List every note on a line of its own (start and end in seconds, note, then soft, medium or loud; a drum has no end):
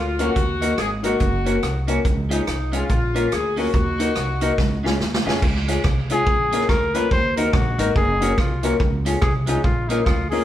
0.00 0.30 D2 medium
0.00 0.20 F4 medium
0.19 0.29 A#3 medium
0.19 0.29 C#4 medium
0.19 0.30 C#4 medium
0.19 0.29 F4 medium
0.19 0.30 F4 medium
0.19 0.79 F#4 loud
0.19 0.30 A#4 loud
0.19 closed hi-hat medium
0.36 0.72 D#2 loud
0.36 kick loud
0.36 closed hi-hat medium
0.61 0.72 A#3 medium
0.61 0.71 D#4 medium
0.61 0.72 D#4 medium
0.61 0.72 F#4 medium
0.61 0.72 A#4 medium
0.61 closed hi-hat medium
0.78 1.14 G#1 medium
0.78 0.90 G#4 loud
0.78 cross-stick loud
0.78 closed hi-hat medium
1.02 1.14 A#3 medium
1.02 1.13 D#4 medium
1.02 1.14 D#4 medium
1.02 1.14 F#4 medium
1.02 1.15 F#4 loud
1.02 1.85 F#4 medium
1.02 1.14 A#4 loud
1.02 closed hi-hat medium
1.20 1.57 F#1 loud
1.20 kick loud
1.20 closed hi-hat medium
1.45 1.56 A#3 medium
1.45 1.56 C#4 medium
1.45 1.56 F#4 medium
1.45 1.57 F#4 medium
1.45 1.56 A#4 loud
1.45 closed hi-hat medium
1.63 1.99 C2 medium
1.63 cross-stick loud
1.63 closed hi-hat medium
1.87 1.98 A#3 medium
1.87 1.98 C#4 loud
1.87 1.98 C#4 medium
1.87 1.98 F#4 medium
1.87 1.99 F#4 medium
1.87 1.99 A#4 loud
1.87 closed hi-hat medium
2.05 2.41 C#2 loud
2.05 kick loud
2.05 closed hi-hat medium
2.29 2.40 G#3 medium
2.29 2.40 C#4 medium
2.29 2.41 C#4 medium
2.29 2.71 D#4 medium
2.29 2.41 F4 medium
2.29 2.41 G#4 medium
2.29 closed hi-hat loud
2.47 2.83 C2 medium
2.47 cross-stick loud
2.47 closed hi-hat medium
2.72 2.83 G#3 medium
2.72 2.82 C#4 medium
2.72 2.83 C#4 medium
2.72 2.83 F4 medium
2.72 3.32 F4 medium
2.72 2.84 F4 medium
2.72 2.83 G#4 loud
2.72 closed hi-hat medium
2.89 3.25 A#1 medium
2.89 kick loud
2.89 closed hi-hat medium
3.14 3.25 A#3 medium
3.14 3.25 C#4 medium
3.14 3.26 C#4 medium
3.14 3.25 F4 medium
3.14 3.26 F4 medium
3.14 3.25 A#4 loud
3.14 closed hi-hat medium
3.32 3.68 D2 medium
3.32 3.58 G#4 loud
3.32 cross-stick loud
3.32 closed hi-hat medium
3.56 3.67 A#3 medium
3.56 3.67 C#4 loud
3.56 3.68 C#4 medium
3.56 3.68 F4 medium
3.56 4.80 F#4 loud
3.56 3.68 A#4 loud
3.56 open hi-hat medium
3.74 4.10 D#2 loud
3.74 kick loud
3.74 closed hi-hat medium
3.98 4.09 A#3 medium
3.98 4.10 D#4 medium
3.98 4.10 F#4 medium
3.98 4.10 A#4 medium
3.98 closed hi-hat loud
4.16 4.52 C2 medium
4.16 cross-stick loud
4.16 closed hi-hat medium
4.41 4.52 A#3 medium
4.41 4.52 D#4 loud
4.41 4.52 D#4 medium
4.41 4.52 F#4 medium
4.41 4.53 F#4 loud
4.41 4.52 A#4 medium
4.41 closed hi-hat medium
4.58 4.94 C#2 loud
4.58 kick loud
4.58 snare medium
4.83 4.94 G#3 medium
4.83 4.94 C#4 medium
4.83 4.94 F4 medium
4.83 4.95 F4 medium
4.83 4.94 G#4 loud
4.83 snare medium
5.00 5.22 D#2 loud
5.00 snare medium
5.14 snare loud
5.25 5.40 F2 medium
5.25 5.36 G#3 medium
5.25 5.36 C#4 loud
5.25 5.36 C#4 medium
5.25 5.36 F4 medium
5.25 5.37 F4 loud
5.25 5.37 G#4 loud
5.25 snare medium
5.42 5.78 C#2 loud
5.42 kick loud
5.42 crash medium
5.68 5.78 G#3 medium
5.68 5.78 C#4 medium
5.68 5.79 C#4 medium
5.68 5.79 F4 medium
5.68 5.79 G#4 medium
5.68 closed hi-hat loud
5.84 6.27 C2 medium
5.84 kick loud
5.84 cross-stick loud
6.10 6.20 G#3 medium
6.10 6.20 C#4 medium
6.10 6.21 C#4 medium
6.10 6.21 F4 medium
6.10 6.21 G#4 loud
6.10 6.71 G#4 loud
6.10 closed hi-hat medium
6.27 6.63 A#1 loud
6.27 kick loud
6.51 6.62 A#3 medium
6.51 6.62 C#4 medium
6.51 6.63 C#4 medium
6.51 6.63 F4 medium
6.51 6.63 A#4 loud
6.51 closed hi-hat medium
6.61 cross-stick medium
6.69 7.05 D2 medium
6.69 6.97 A#4 loud
6.69 kick loud
6.69 cross-stick loud
6.94 7.05 A#3 medium
6.94 7.05 C#4 loud
6.94 7.05 C#4 medium
6.94 7.05 F4 medium
6.94 7.06 F4 loud
6.94 7.05 A#4 loud
6.94 7.11 B4 loud
6.94 closed hi-hat medium
7.11 7.47 D#2 loud
7.11 7.35 C5 loud
7.11 kick loud
7.37 7.47 A#3 medium
7.37 7.47 D#4 medium
7.37 7.47 F#4 medium
7.37 7.48 F#4 medium
7.37 7.55 A#4 loud
7.37 7.48 A#4 medium
7.37 closed hi-hat loud
7.53 7.75 A#1 medium
7.53 7.96 F#4 medium
7.53 kick loud
7.53 cross-stick loud
7.78 7.93 G#1 loud
7.78 7.89 A#3 medium
7.78 7.89 D#4 medium
7.78 7.90 D#4 medium
7.78 7.89 F#4 medium
7.78 7.90 F#4 medium
7.78 7.90 A#4 loud
7.78 closed hi-hat medium
7.96 8.32 F#1 loud
7.96 8.40 G#4 loud
7.96 kick loud
8.20 8.32 A#3 medium
8.20 8.31 C#4 medium
8.20 8.32 C#4 medium
8.20 8.31 F#4 medium
8.20 8.32 F#4 loud
8.20 8.32 A#4 medium
8.20 closed hi-hat medium
8.38 8.74 C2 medium
8.38 8.80 F4 medium
8.38 kick loud
8.38 cross-stick loud
8.63 8.74 A#3 medium
8.63 8.73 C#4 loud
8.63 8.74 C#4 medium
8.63 8.73 F#4 medium
8.63 8.74 F#4 medium
8.63 8.74 A#4 loud
8.63 closed hi-hat medium
8.80 9.16 C#2 loud
8.80 kick loud
9.05 9.16 G#3 medium
9.05 9.16 C#4 medium
9.05 9.16 F4 medium
9.05 9.16 G#4 loud
9.05 closed hi-hat loud
9.22 9.58 C2 loud
9.22 9.33 G#4 medium
9.22 kick loud
9.22 cross-stick loud
9.47 9.57 G#3 loud
9.47 9.58 C#4 medium
9.47 9.58 C#4 loud
9.47 9.63 D#4 medium
9.47 9.58 F4 medium
9.47 9.58 G#4 loud
9.47 closed hi-hat medium
9.63 10.00 A#1 medium
9.63 9.90 F4 medium
9.63 kick loud
9.89 10.00 A#3 medium
9.89 10.00 C#4 medium
9.89 10.07 D#4 medium
9.89 10.00 F4 medium
9.89 10.01 F4 medium
9.89 10.01 A#4 loud
9.89 closed hi-hat medium
10.06 10.42 D2 loud
10.06 10.29 F4 medium
10.06 kick loud
10.06 cross-stick loud
10.30 10.42 A#3 medium
10.30 10.42 C#4 loud
10.30 10.42 C#4 medium
10.30 10.42 F4 medium
10.30 10.43 F4 medium
10.30 10.44 G#4 medium
10.30 10.42 A#4 loud
10.30 open hi-hat medium